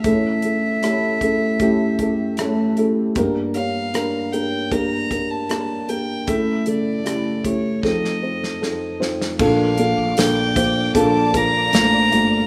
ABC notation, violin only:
X:1
M:4/4
L:1/16
Q:1/4=77
K:Aphr
V:1 name="Violin"
e12- e2 z2 | z2 f4 g2 b3 a3 g2 | e2 d4 ^c2 _e6 z2 | [K:Bblyd] f4 g4 a2 b6 |]